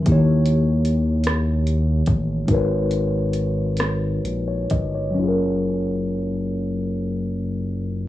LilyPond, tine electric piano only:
\new Staff \with { instrumentName = "Tine electric piano" } { \time 6/8 \key fis \major \tempo 4. = 45 << { r2. | r2 r16 cis''16 dis''16 cis''16~ | cis''16 r2 r8. | } \\ { <dis ais e' g' cis''>2. | <gis dis' fis' ais' b' cis''>2. | <fis cis' eis' gis' ais'>2. | } >> }